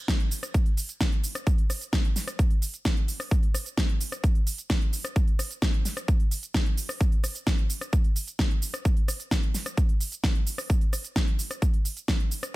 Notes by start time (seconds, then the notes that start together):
0.08 kick, snare, closed hi-hat, shaker
0.20 closed hi-hat
0.31 open hi-hat, shaker
0.43 cross-stick, closed hi-hat, shaker
0.54 kick, closed hi-hat, shaker
0.66 closed hi-hat
0.77 open hi-hat, shaker
0.89 closed hi-hat, shaker
1.01 kick, snare, closed hi-hat, shaker
1.12 closed hi-hat
1.24 open hi-hat, shaker
1.35 cross-stick, closed hi-hat, shaker
1.47 kick, closed hi-hat, shaker
1.58 closed hi-hat
1.70 cross-stick, open hi-hat, shaker
1.81 closed hi-hat, shaker
1.93 kick, snare, closed hi-hat, shaker
2.04 closed hi-hat
2.16 snare, open hi-hat, shaker
2.27 cross-stick, closed hi-hat, shaker
2.39 kick, closed hi-hat, shaker
2.51 closed hi-hat
2.62 open hi-hat, shaker
2.74 closed hi-hat, shaker
2.85 kick, snare, closed hi-hat, shaker
2.97 closed hi-hat
3.08 open hi-hat, shaker
3.20 cross-stick, open hi-hat, shaker
3.31 kick, closed hi-hat, shaker
3.43 closed hi-hat
3.54 cross-stick, open hi-hat, shaker
3.66 closed hi-hat, shaker
3.77 kick, snare, closed hi-hat, shaker
3.89 closed hi-hat
4.01 open hi-hat, shaker
4.12 cross-stick, closed hi-hat, shaker
4.24 kick, closed hi-hat, shaker
4.35 closed hi-hat
4.47 open hi-hat, shaker
4.58 closed hi-hat, shaker
4.70 kick, snare, closed hi-hat, shaker
4.81 closed hi-hat
4.93 open hi-hat, shaker
5.05 cross-stick, closed hi-hat, shaker
5.16 kick, closed hi-hat, shaker
5.28 closed hi-hat
5.39 cross-stick, open hi-hat, shaker
5.51 closed hi-hat, shaker
5.62 kick, snare, closed hi-hat, shaker
5.74 closed hi-hat
5.85 snare, open hi-hat, shaker
5.97 cross-stick, closed hi-hat, shaker
6.08 kick, closed hi-hat, shaker
6.20 closed hi-hat
6.31 open hi-hat, shaker
6.43 closed hi-hat, shaker
6.54 kick, snare, closed hi-hat, shaker
6.66 closed hi-hat
6.78 open hi-hat, shaker
6.89 cross-stick, open hi-hat, shaker
7.01 kick, closed hi-hat, shaker
7.12 closed hi-hat
7.24 cross-stick, open hi-hat, shaker
7.35 closed hi-hat, shaker
7.47 kick, snare, closed hi-hat, shaker
7.58 closed hi-hat
7.70 open hi-hat, shaker
7.81 cross-stick, closed hi-hat, shaker
7.93 kick, closed hi-hat, shaker
8.04 closed hi-hat
8.16 open hi-hat, shaker
8.28 closed hi-hat, shaker
8.39 kick, snare, closed hi-hat, shaker
8.51 closed hi-hat
8.62 open hi-hat, shaker
8.74 cross-stick, closed hi-hat, shaker
8.85 kick, closed hi-hat, shaker
8.97 closed hi-hat
9.08 cross-stick, open hi-hat, shaker
9.20 closed hi-hat, shaker
9.31 kick, snare, closed hi-hat, shaker
9.43 closed hi-hat
9.54 snare, open hi-hat, shaker
9.66 cross-stick, closed hi-hat, shaker
9.77 kick, closed hi-hat, shaker
9.89 closed hi-hat
10.01 open hi-hat, shaker
10.12 closed hi-hat, shaker
10.24 kick, snare, closed hi-hat, shaker
10.35 closed hi-hat
10.47 open hi-hat, shaker
10.58 cross-stick, open hi-hat, shaker
10.70 kick, closed hi-hat, shaker
10.81 closed hi-hat
10.93 cross-stick, open hi-hat, shaker
11.04 closed hi-hat, shaker
11.16 kick, snare, closed hi-hat, shaker
11.28 closed hi-hat
11.39 open hi-hat, shaker
11.51 cross-stick, closed hi-hat, shaker
11.62 kick, closed hi-hat, shaker
11.74 closed hi-hat
11.85 open hi-hat, shaker
11.97 closed hi-hat, shaker
12.08 kick, snare, closed hi-hat, shaker
12.20 closed hi-hat
12.31 open hi-hat, shaker
12.43 cross-stick, closed hi-hat, shaker